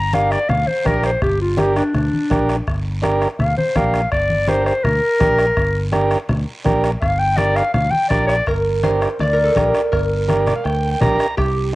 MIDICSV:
0, 0, Header, 1, 7, 480
1, 0, Start_track
1, 0, Key_signature, -2, "minor"
1, 0, Tempo, 362757
1, 1616, Time_signature, 4, 2, 24, 8
1, 15548, End_track
2, 0, Start_track
2, 0, Title_t, "Clarinet"
2, 0, Program_c, 0, 71
2, 0, Note_on_c, 0, 82, 84
2, 179, Note_on_c, 0, 77, 83
2, 199, Note_off_c, 0, 82, 0
2, 414, Note_on_c, 0, 74, 84
2, 434, Note_off_c, 0, 77, 0
2, 645, Note_on_c, 0, 77, 79
2, 665, Note_off_c, 0, 74, 0
2, 887, Note_on_c, 0, 72, 83
2, 907, Note_off_c, 0, 77, 0
2, 1145, Note_on_c, 0, 70, 93
2, 1164, Note_off_c, 0, 72, 0
2, 1373, Note_off_c, 0, 70, 0
2, 1391, Note_on_c, 0, 72, 77
2, 1612, Note_off_c, 0, 72, 0
2, 1620, Note_on_c, 0, 67, 83
2, 1851, Note_off_c, 0, 67, 0
2, 1865, Note_on_c, 0, 65, 84
2, 2101, Note_on_c, 0, 67, 83
2, 2121, Note_off_c, 0, 65, 0
2, 2331, Note_off_c, 0, 67, 0
2, 2339, Note_on_c, 0, 62, 87
2, 2570, Note_off_c, 0, 62, 0
2, 2589, Note_on_c, 0, 62, 86
2, 3513, Note_off_c, 0, 62, 0
2, 4483, Note_on_c, 0, 77, 82
2, 4721, Note_off_c, 0, 77, 0
2, 4728, Note_on_c, 0, 72, 87
2, 4977, Note_on_c, 0, 77, 87
2, 4996, Note_off_c, 0, 72, 0
2, 5440, Note_off_c, 0, 77, 0
2, 5451, Note_on_c, 0, 74, 86
2, 5927, Note_on_c, 0, 72, 92
2, 5947, Note_off_c, 0, 74, 0
2, 6152, Note_off_c, 0, 72, 0
2, 6160, Note_on_c, 0, 72, 86
2, 6399, Note_on_c, 0, 70, 103
2, 6419, Note_off_c, 0, 72, 0
2, 7800, Note_off_c, 0, 70, 0
2, 9278, Note_on_c, 0, 77, 96
2, 9512, Note_on_c, 0, 79, 87
2, 9532, Note_off_c, 0, 77, 0
2, 9754, Note_on_c, 0, 74, 98
2, 9774, Note_off_c, 0, 79, 0
2, 10001, Note_on_c, 0, 77, 93
2, 10020, Note_off_c, 0, 74, 0
2, 10224, Note_off_c, 0, 77, 0
2, 10232, Note_on_c, 0, 77, 89
2, 10462, Note_on_c, 0, 79, 98
2, 10481, Note_off_c, 0, 77, 0
2, 10697, Note_off_c, 0, 79, 0
2, 10705, Note_on_c, 0, 74, 95
2, 10936, Note_off_c, 0, 74, 0
2, 10944, Note_on_c, 0, 74, 98
2, 11188, Note_off_c, 0, 74, 0
2, 15548, End_track
3, 0, Start_track
3, 0, Title_t, "Harp"
3, 0, Program_c, 1, 46
3, 11216, Note_on_c, 1, 70, 95
3, 11690, Note_on_c, 1, 72, 94
3, 12178, Note_on_c, 1, 74, 94
3, 12338, Note_off_c, 1, 70, 0
3, 12343, Note_on_c, 1, 70, 86
3, 12488, Note_on_c, 1, 69, 85
3, 12568, Note_off_c, 1, 69, 0
3, 12568, Note_off_c, 1, 70, 0
3, 12647, Note_on_c, 1, 70, 79
3, 13118, Note_off_c, 1, 70, 0
3, 13123, Note_on_c, 1, 70, 88
3, 14309, Note_off_c, 1, 72, 0
3, 14621, Note_off_c, 1, 74, 0
3, 15047, Note_on_c, 1, 67, 96
3, 15548, Note_off_c, 1, 67, 0
3, 15548, Note_off_c, 1, 70, 0
3, 15548, End_track
4, 0, Start_track
4, 0, Title_t, "Transistor combo organ"
4, 0, Program_c, 2, 18
4, 180, Note_on_c, 2, 62, 74
4, 184, Note_on_c, 2, 67, 68
4, 191, Note_on_c, 2, 70, 81
4, 514, Note_off_c, 2, 62, 0
4, 516, Note_off_c, 2, 67, 0
4, 520, Note_off_c, 2, 70, 0
4, 1121, Note_on_c, 2, 62, 74
4, 1126, Note_on_c, 2, 67, 63
4, 1133, Note_on_c, 2, 70, 85
4, 1464, Note_off_c, 2, 62, 0
4, 1467, Note_off_c, 2, 67, 0
4, 1471, Note_off_c, 2, 70, 0
4, 2077, Note_on_c, 2, 62, 71
4, 2081, Note_on_c, 2, 67, 69
4, 2090, Note_on_c, 2, 70, 83
4, 2422, Note_off_c, 2, 62, 0
4, 2424, Note_off_c, 2, 67, 0
4, 2429, Note_off_c, 2, 70, 0
4, 3046, Note_on_c, 2, 62, 76
4, 3052, Note_on_c, 2, 67, 68
4, 3058, Note_on_c, 2, 70, 78
4, 3386, Note_off_c, 2, 62, 0
4, 3389, Note_off_c, 2, 67, 0
4, 3392, Note_off_c, 2, 70, 0
4, 3997, Note_on_c, 2, 62, 90
4, 4008, Note_on_c, 2, 70, 100
4, 4009, Note_on_c, 2, 67, 85
4, 4341, Note_off_c, 2, 62, 0
4, 4347, Note_off_c, 2, 67, 0
4, 4347, Note_off_c, 2, 70, 0
4, 4968, Note_on_c, 2, 62, 75
4, 4975, Note_on_c, 2, 67, 63
4, 4978, Note_on_c, 2, 70, 73
4, 5306, Note_off_c, 2, 62, 0
4, 5309, Note_off_c, 2, 67, 0
4, 5311, Note_off_c, 2, 70, 0
4, 5923, Note_on_c, 2, 62, 78
4, 5931, Note_on_c, 2, 67, 68
4, 5931, Note_on_c, 2, 70, 83
4, 6263, Note_off_c, 2, 62, 0
4, 6267, Note_off_c, 2, 67, 0
4, 6267, Note_off_c, 2, 70, 0
4, 6877, Note_on_c, 2, 62, 72
4, 6882, Note_on_c, 2, 67, 68
4, 6890, Note_on_c, 2, 70, 82
4, 7219, Note_off_c, 2, 62, 0
4, 7222, Note_off_c, 2, 67, 0
4, 7226, Note_off_c, 2, 70, 0
4, 7837, Note_on_c, 2, 62, 88
4, 7837, Note_on_c, 2, 67, 76
4, 7847, Note_on_c, 2, 70, 105
4, 8179, Note_off_c, 2, 62, 0
4, 8179, Note_off_c, 2, 67, 0
4, 8184, Note_off_c, 2, 70, 0
4, 8794, Note_on_c, 2, 62, 92
4, 8802, Note_on_c, 2, 67, 83
4, 8809, Note_on_c, 2, 70, 98
4, 9137, Note_off_c, 2, 62, 0
4, 9141, Note_off_c, 2, 67, 0
4, 9145, Note_off_c, 2, 70, 0
4, 9755, Note_on_c, 2, 62, 81
4, 9757, Note_on_c, 2, 67, 68
4, 9765, Note_on_c, 2, 70, 90
4, 10097, Note_off_c, 2, 62, 0
4, 10098, Note_off_c, 2, 67, 0
4, 10102, Note_off_c, 2, 70, 0
4, 10720, Note_on_c, 2, 62, 77
4, 10729, Note_on_c, 2, 67, 71
4, 10730, Note_on_c, 2, 70, 85
4, 11060, Note_off_c, 2, 62, 0
4, 11064, Note_off_c, 2, 67, 0
4, 11065, Note_off_c, 2, 70, 0
4, 11687, Note_on_c, 2, 62, 68
4, 11691, Note_on_c, 2, 67, 62
4, 11695, Note_on_c, 2, 70, 81
4, 12024, Note_off_c, 2, 62, 0
4, 12026, Note_off_c, 2, 67, 0
4, 12028, Note_off_c, 2, 70, 0
4, 12641, Note_on_c, 2, 62, 71
4, 12648, Note_on_c, 2, 67, 68
4, 12658, Note_on_c, 2, 70, 76
4, 12982, Note_off_c, 2, 62, 0
4, 12985, Note_off_c, 2, 67, 0
4, 12990, Note_off_c, 2, 70, 0
4, 13600, Note_on_c, 2, 62, 76
4, 13608, Note_on_c, 2, 70, 85
4, 13610, Note_on_c, 2, 67, 67
4, 13848, Note_on_c, 2, 74, 75
4, 13942, Note_off_c, 2, 62, 0
4, 13946, Note_off_c, 2, 70, 0
4, 13947, Note_off_c, 2, 67, 0
4, 13962, Note_off_c, 2, 74, 0
4, 13972, Note_on_c, 2, 77, 67
4, 14081, Note_on_c, 2, 79, 67
4, 14084, Note_off_c, 2, 77, 0
4, 14422, Note_off_c, 2, 79, 0
4, 14440, Note_on_c, 2, 79, 72
4, 14558, Note_off_c, 2, 79, 0
4, 14563, Note_on_c, 2, 62, 93
4, 14571, Note_on_c, 2, 82, 70
4, 14572, Note_on_c, 2, 67, 84
4, 14576, Note_on_c, 2, 70, 94
4, 14905, Note_off_c, 2, 62, 0
4, 14909, Note_off_c, 2, 67, 0
4, 14911, Note_off_c, 2, 70, 0
4, 15020, Note_off_c, 2, 82, 0
4, 15548, End_track
5, 0, Start_track
5, 0, Title_t, "Fingered electric bass"
5, 0, Program_c, 3, 33
5, 0, Note_on_c, 3, 31, 89
5, 464, Note_off_c, 3, 31, 0
5, 649, Note_on_c, 3, 38, 94
5, 844, Note_off_c, 3, 38, 0
5, 1135, Note_on_c, 3, 34, 84
5, 1519, Note_off_c, 3, 34, 0
5, 1612, Note_on_c, 3, 31, 86
5, 2381, Note_off_c, 3, 31, 0
5, 2570, Note_on_c, 3, 38, 93
5, 2764, Note_off_c, 3, 38, 0
5, 3056, Note_on_c, 3, 34, 86
5, 3439, Note_off_c, 3, 34, 0
5, 3538, Note_on_c, 3, 31, 81
5, 4304, Note_off_c, 3, 31, 0
5, 4486, Note_on_c, 3, 38, 82
5, 4681, Note_off_c, 3, 38, 0
5, 4972, Note_on_c, 3, 34, 86
5, 5356, Note_off_c, 3, 34, 0
5, 5452, Note_on_c, 3, 31, 81
5, 6219, Note_off_c, 3, 31, 0
5, 6407, Note_on_c, 3, 38, 95
5, 6600, Note_off_c, 3, 38, 0
5, 6890, Note_on_c, 3, 34, 81
5, 7274, Note_off_c, 3, 34, 0
5, 7368, Note_on_c, 3, 31, 89
5, 8136, Note_off_c, 3, 31, 0
5, 8326, Note_on_c, 3, 38, 97
5, 8519, Note_off_c, 3, 38, 0
5, 8810, Note_on_c, 3, 34, 94
5, 9193, Note_off_c, 3, 34, 0
5, 9292, Note_on_c, 3, 31, 89
5, 10058, Note_off_c, 3, 31, 0
5, 10243, Note_on_c, 3, 38, 85
5, 10437, Note_off_c, 3, 38, 0
5, 10728, Note_on_c, 3, 34, 94
5, 11112, Note_off_c, 3, 34, 0
5, 11208, Note_on_c, 3, 31, 80
5, 11977, Note_off_c, 3, 31, 0
5, 12167, Note_on_c, 3, 38, 85
5, 12552, Note_off_c, 3, 38, 0
5, 12652, Note_on_c, 3, 34, 88
5, 12843, Note_off_c, 3, 34, 0
5, 13134, Note_on_c, 3, 31, 86
5, 13902, Note_off_c, 3, 31, 0
5, 14095, Note_on_c, 3, 38, 89
5, 14479, Note_off_c, 3, 38, 0
5, 14578, Note_on_c, 3, 34, 87
5, 14769, Note_off_c, 3, 34, 0
5, 15055, Note_on_c, 3, 36, 88
5, 15548, Note_off_c, 3, 36, 0
5, 15548, End_track
6, 0, Start_track
6, 0, Title_t, "Two-headed folk drums"
6, 183, Note_on_c, 9, 37, 81
6, 315, Note_off_c, 9, 37, 0
6, 420, Note_on_c, 9, 37, 87
6, 553, Note_off_c, 9, 37, 0
6, 657, Note_on_c, 9, 37, 84
6, 789, Note_off_c, 9, 37, 0
6, 1136, Note_on_c, 9, 36, 80
6, 1138, Note_on_c, 9, 37, 88
6, 1268, Note_off_c, 9, 36, 0
6, 1270, Note_off_c, 9, 37, 0
6, 1371, Note_on_c, 9, 37, 84
6, 1503, Note_off_c, 9, 37, 0
6, 1613, Note_on_c, 9, 37, 87
6, 1615, Note_on_c, 9, 36, 88
6, 1746, Note_off_c, 9, 37, 0
6, 1748, Note_off_c, 9, 36, 0
6, 2098, Note_on_c, 9, 37, 76
6, 2230, Note_off_c, 9, 37, 0
6, 2336, Note_on_c, 9, 37, 85
6, 2468, Note_off_c, 9, 37, 0
6, 2574, Note_on_c, 9, 37, 76
6, 2706, Note_off_c, 9, 37, 0
6, 3058, Note_on_c, 9, 36, 81
6, 3060, Note_on_c, 9, 37, 82
6, 3190, Note_off_c, 9, 36, 0
6, 3193, Note_off_c, 9, 37, 0
6, 3299, Note_on_c, 9, 37, 79
6, 3432, Note_off_c, 9, 37, 0
6, 3539, Note_on_c, 9, 36, 82
6, 3541, Note_on_c, 9, 37, 81
6, 3671, Note_off_c, 9, 36, 0
6, 3673, Note_off_c, 9, 37, 0
6, 4019, Note_on_c, 9, 37, 88
6, 4151, Note_off_c, 9, 37, 0
6, 4258, Note_on_c, 9, 37, 83
6, 4390, Note_off_c, 9, 37, 0
6, 4497, Note_on_c, 9, 37, 75
6, 4629, Note_off_c, 9, 37, 0
6, 4971, Note_on_c, 9, 37, 82
6, 4974, Note_on_c, 9, 36, 78
6, 5103, Note_off_c, 9, 37, 0
6, 5107, Note_off_c, 9, 36, 0
6, 5210, Note_on_c, 9, 37, 80
6, 5343, Note_off_c, 9, 37, 0
6, 5447, Note_on_c, 9, 37, 92
6, 5453, Note_on_c, 9, 36, 85
6, 5579, Note_off_c, 9, 37, 0
6, 5585, Note_off_c, 9, 36, 0
6, 5931, Note_on_c, 9, 37, 76
6, 6064, Note_off_c, 9, 37, 0
6, 6169, Note_on_c, 9, 37, 81
6, 6301, Note_off_c, 9, 37, 0
6, 6415, Note_on_c, 9, 37, 85
6, 6547, Note_off_c, 9, 37, 0
6, 6889, Note_on_c, 9, 37, 77
6, 6892, Note_on_c, 9, 36, 84
6, 7021, Note_off_c, 9, 37, 0
6, 7024, Note_off_c, 9, 36, 0
6, 7126, Note_on_c, 9, 37, 87
6, 7259, Note_off_c, 9, 37, 0
6, 7369, Note_on_c, 9, 37, 87
6, 7370, Note_on_c, 9, 36, 82
6, 7501, Note_off_c, 9, 37, 0
6, 7503, Note_off_c, 9, 36, 0
6, 7845, Note_on_c, 9, 37, 90
6, 7977, Note_off_c, 9, 37, 0
6, 8086, Note_on_c, 9, 37, 91
6, 8218, Note_off_c, 9, 37, 0
6, 8326, Note_on_c, 9, 37, 83
6, 8459, Note_off_c, 9, 37, 0
6, 8809, Note_on_c, 9, 37, 77
6, 8810, Note_on_c, 9, 36, 82
6, 8942, Note_off_c, 9, 36, 0
6, 8942, Note_off_c, 9, 37, 0
6, 9050, Note_on_c, 9, 37, 77
6, 9182, Note_off_c, 9, 37, 0
6, 9291, Note_on_c, 9, 36, 92
6, 9295, Note_on_c, 9, 37, 81
6, 9423, Note_off_c, 9, 36, 0
6, 9427, Note_off_c, 9, 37, 0
6, 9771, Note_on_c, 9, 37, 75
6, 9904, Note_off_c, 9, 37, 0
6, 10009, Note_on_c, 9, 37, 81
6, 10142, Note_off_c, 9, 37, 0
6, 10246, Note_on_c, 9, 37, 89
6, 10378, Note_off_c, 9, 37, 0
6, 10728, Note_on_c, 9, 36, 76
6, 10728, Note_on_c, 9, 37, 86
6, 10860, Note_off_c, 9, 36, 0
6, 10860, Note_off_c, 9, 37, 0
6, 10972, Note_on_c, 9, 37, 83
6, 11104, Note_off_c, 9, 37, 0
6, 11209, Note_on_c, 9, 36, 77
6, 11210, Note_on_c, 9, 37, 90
6, 11341, Note_off_c, 9, 36, 0
6, 11342, Note_off_c, 9, 37, 0
6, 11690, Note_on_c, 9, 37, 74
6, 11822, Note_off_c, 9, 37, 0
6, 11935, Note_on_c, 9, 37, 90
6, 12067, Note_off_c, 9, 37, 0
6, 12176, Note_on_c, 9, 37, 84
6, 12309, Note_off_c, 9, 37, 0
6, 12654, Note_on_c, 9, 36, 74
6, 12662, Note_on_c, 9, 37, 88
6, 12786, Note_off_c, 9, 36, 0
6, 12794, Note_off_c, 9, 37, 0
6, 12896, Note_on_c, 9, 37, 83
6, 13028, Note_off_c, 9, 37, 0
6, 13134, Note_on_c, 9, 36, 83
6, 13138, Note_on_c, 9, 37, 86
6, 13267, Note_off_c, 9, 36, 0
6, 13270, Note_off_c, 9, 37, 0
6, 13624, Note_on_c, 9, 37, 81
6, 13756, Note_off_c, 9, 37, 0
6, 13861, Note_on_c, 9, 37, 80
6, 13993, Note_off_c, 9, 37, 0
6, 14103, Note_on_c, 9, 37, 73
6, 14235, Note_off_c, 9, 37, 0
6, 14578, Note_on_c, 9, 36, 78
6, 14579, Note_on_c, 9, 37, 78
6, 14710, Note_off_c, 9, 36, 0
6, 14712, Note_off_c, 9, 37, 0
6, 14820, Note_on_c, 9, 37, 82
6, 14953, Note_off_c, 9, 37, 0
6, 15057, Note_on_c, 9, 36, 86
6, 15058, Note_on_c, 9, 37, 91
6, 15189, Note_off_c, 9, 36, 0
6, 15190, Note_off_c, 9, 37, 0
6, 15548, End_track
7, 0, Start_track
7, 0, Title_t, "Drums"
7, 174, Note_on_c, 9, 63, 94
7, 177, Note_on_c, 9, 73, 75
7, 306, Note_off_c, 9, 63, 0
7, 310, Note_off_c, 9, 73, 0
7, 411, Note_on_c, 9, 73, 64
7, 543, Note_off_c, 9, 73, 0
7, 650, Note_on_c, 9, 74, 61
7, 657, Note_on_c, 9, 63, 35
7, 657, Note_on_c, 9, 64, 89
7, 783, Note_off_c, 9, 74, 0
7, 790, Note_off_c, 9, 63, 0
7, 790, Note_off_c, 9, 64, 0
7, 894, Note_on_c, 9, 63, 64
7, 1026, Note_off_c, 9, 63, 0
7, 1132, Note_on_c, 9, 63, 76
7, 1134, Note_on_c, 9, 73, 64
7, 1264, Note_off_c, 9, 63, 0
7, 1267, Note_off_c, 9, 73, 0
7, 1369, Note_on_c, 9, 73, 71
7, 1501, Note_off_c, 9, 73, 0
7, 1614, Note_on_c, 9, 74, 67
7, 1615, Note_on_c, 9, 63, 31
7, 1615, Note_on_c, 9, 64, 65
7, 1746, Note_off_c, 9, 74, 0
7, 1748, Note_off_c, 9, 63, 0
7, 1748, Note_off_c, 9, 64, 0
7, 2087, Note_on_c, 9, 63, 101
7, 2093, Note_on_c, 9, 73, 71
7, 2220, Note_off_c, 9, 63, 0
7, 2225, Note_off_c, 9, 73, 0
7, 2331, Note_on_c, 9, 73, 64
7, 2464, Note_off_c, 9, 73, 0
7, 2572, Note_on_c, 9, 74, 64
7, 2579, Note_on_c, 9, 63, 35
7, 2579, Note_on_c, 9, 64, 77
7, 2705, Note_off_c, 9, 74, 0
7, 2711, Note_off_c, 9, 63, 0
7, 2711, Note_off_c, 9, 64, 0
7, 2821, Note_on_c, 9, 63, 72
7, 2953, Note_off_c, 9, 63, 0
7, 3055, Note_on_c, 9, 73, 66
7, 3057, Note_on_c, 9, 63, 82
7, 3057, Note_on_c, 9, 64, 66
7, 3188, Note_off_c, 9, 73, 0
7, 3189, Note_off_c, 9, 63, 0
7, 3189, Note_off_c, 9, 64, 0
7, 3297, Note_on_c, 9, 73, 68
7, 3429, Note_off_c, 9, 73, 0
7, 3534, Note_on_c, 9, 74, 60
7, 3543, Note_on_c, 9, 63, 34
7, 3667, Note_off_c, 9, 74, 0
7, 3675, Note_off_c, 9, 63, 0
7, 4014, Note_on_c, 9, 63, 90
7, 4014, Note_on_c, 9, 73, 78
7, 4146, Note_off_c, 9, 63, 0
7, 4146, Note_off_c, 9, 73, 0
7, 4254, Note_on_c, 9, 73, 63
7, 4386, Note_off_c, 9, 73, 0
7, 4495, Note_on_c, 9, 63, 34
7, 4495, Note_on_c, 9, 64, 76
7, 4496, Note_on_c, 9, 74, 70
7, 4627, Note_off_c, 9, 63, 0
7, 4627, Note_off_c, 9, 64, 0
7, 4629, Note_off_c, 9, 74, 0
7, 4738, Note_on_c, 9, 63, 73
7, 4870, Note_off_c, 9, 63, 0
7, 4971, Note_on_c, 9, 63, 83
7, 4971, Note_on_c, 9, 64, 67
7, 4974, Note_on_c, 9, 73, 65
7, 5104, Note_off_c, 9, 63, 0
7, 5104, Note_off_c, 9, 64, 0
7, 5106, Note_off_c, 9, 73, 0
7, 5212, Note_on_c, 9, 73, 69
7, 5344, Note_off_c, 9, 73, 0
7, 5449, Note_on_c, 9, 63, 34
7, 5452, Note_on_c, 9, 74, 69
7, 5581, Note_off_c, 9, 63, 0
7, 5584, Note_off_c, 9, 74, 0
7, 5685, Note_on_c, 9, 63, 77
7, 5818, Note_off_c, 9, 63, 0
7, 5921, Note_on_c, 9, 63, 95
7, 5933, Note_on_c, 9, 73, 74
7, 6053, Note_off_c, 9, 63, 0
7, 6065, Note_off_c, 9, 73, 0
7, 6172, Note_on_c, 9, 73, 63
7, 6304, Note_off_c, 9, 73, 0
7, 6411, Note_on_c, 9, 63, 38
7, 6411, Note_on_c, 9, 64, 89
7, 6414, Note_on_c, 9, 74, 77
7, 6543, Note_off_c, 9, 63, 0
7, 6543, Note_off_c, 9, 64, 0
7, 6546, Note_off_c, 9, 74, 0
7, 6891, Note_on_c, 9, 73, 73
7, 6892, Note_on_c, 9, 63, 85
7, 6892, Note_on_c, 9, 64, 68
7, 7023, Note_off_c, 9, 73, 0
7, 7024, Note_off_c, 9, 63, 0
7, 7024, Note_off_c, 9, 64, 0
7, 7127, Note_on_c, 9, 73, 73
7, 7259, Note_off_c, 9, 73, 0
7, 7373, Note_on_c, 9, 74, 66
7, 7375, Note_on_c, 9, 63, 36
7, 7505, Note_off_c, 9, 74, 0
7, 7507, Note_off_c, 9, 63, 0
7, 7844, Note_on_c, 9, 63, 86
7, 7849, Note_on_c, 9, 73, 66
7, 7976, Note_off_c, 9, 63, 0
7, 7981, Note_off_c, 9, 73, 0
7, 8082, Note_on_c, 9, 73, 60
7, 8214, Note_off_c, 9, 73, 0
7, 8321, Note_on_c, 9, 74, 67
7, 8328, Note_on_c, 9, 63, 35
7, 8328, Note_on_c, 9, 64, 85
7, 8453, Note_off_c, 9, 74, 0
7, 8460, Note_off_c, 9, 63, 0
7, 8460, Note_off_c, 9, 64, 0
7, 8798, Note_on_c, 9, 73, 67
7, 8805, Note_on_c, 9, 63, 85
7, 8930, Note_off_c, 9, 73, 0
7, 8937, Note_off_c, 9, 63, 0
7, 9050, Note_on_c, 9, 73, 81
7, 9182, Note_off_c, 9, 73, 0
7, 9284, Note_on_c, 9, 63, 34
7, 9285, Note_on_c, 9, 74, 66
7, 9416, Note_off_c, 9, 63, 0
7, 9417, Note_off_c, 9, 74, 0
7, 9761, Note_on_c, 9, 63, 91
7, 9767, Note_on_c, 9, 73, 72
7, 9894, Note_off_c, 9, 63, 0
7, 9899, Note_off_c, 9, 73, 0
7, 10008, Note_on_c, 9, 73, 74
7, 10140, Note_off_c, 9, 73, 0
7, 10242, Note_on_c, 9, 74, 76
7, 10245, Note_on_c, 9, 63, 36
7, 10245, Note_on_c, 9, 64, 86
7, 10375, Note_off_c, 9, 74, 0
7, 10378, Note_off_c, 9, 63, 0
7, 10378, Note_off_c, 9, 64, 0
7, 10476, Note_on_c, 9, 63, 76
7, 10609, Note_off_c, 9, 63, 0
7, 10722, Note_on_c, 9, 63, 82
7, 10723, Note_on_c, 9, 73, 73
7, 10854, Note_off_c, 9, 63, 0
7, 10856, Note_off_c, 9, 73, 0
7, 10971, Note_on_c, 9, 73, 74
7, 11103, Note_off_c, 9, 73, 0
7, 11202, Note_on_c, 9, 74, 64
7, 11334, Note_off_c, 9, 74, 0
7, 11682, Note_on_c, 9, 73, 67
7, 11686, Note_on_c, 9, 63, 77
7, 11814, Note_off_c, 9, 73, 0
7, 11819, Note_off_c, 9, 63, 0
7, 11926, Note_on_c, 9, 73, 62
7, 12059, Note_off_c, 9, 73, 0
7, 12163, Note_on_c, 9, 74, 68
7, 12165, Note_on_c, 9, 63, 70
7, 12295, Note_off_c, 9, 74, 0
7, 12298, Note_off_c, 9, 63, 0
7, 12645, Note_on_c, 9, 63, 77
7, 12647, Note_on_c, 9, 73, 73
7, 12777, Note_off_c, 9, 63, 0
7, 12780, Note_off_c, 9, 73, 0
7, 12891, Note_on_c, 9, 73, 66
7, 13024, Note_off_c, 9, 73, 0
7, 13135, Note_on_c, 9, 74, 64
7, 13267, Note_off_c, 9, 74, 0
7, 13610, Note_on_c, 9, 73, 75
7, 13614, Note_on_c, 9, 63, 82
7, 13743, Note_off_c, 9, 73, 0
7, 13746, Note_off_c, 9, 63, 0
7, 13848, Note_on_c, 9, 73, 63
7, 13852, Note_on_c, 9, 64, 63
7, 13980, Note_off_c, 9, 73, 0
7, 13984, Note_off_c, 9, 64, 0
7, 14093, Note_on_c, 9, 74, 72
7, 14225, Note_off_c, 9, 74, 0
7, 14572, Note_on_c, 9, 63, 82
7, 14572, Note_on_c, 9, 64, 86
7, 14574, Note_on_c, 9, 73, 71
7, 14704, Note_off_c, 9, 63, 0
7, 14704, Note_off_c, 9, 64, 0
7, 14706, Note_off_c, 9, 73, 0
7, 14811, Note_on_c, 9, 73, 77
7, 14944, Note_off_c, 9, 73, 0
7, 15054, Note_on_c, 9, 74, 69
7, 15186, Note_off_c, 9, 74, 0
7, 15548, End_track
0, 0, End_of_file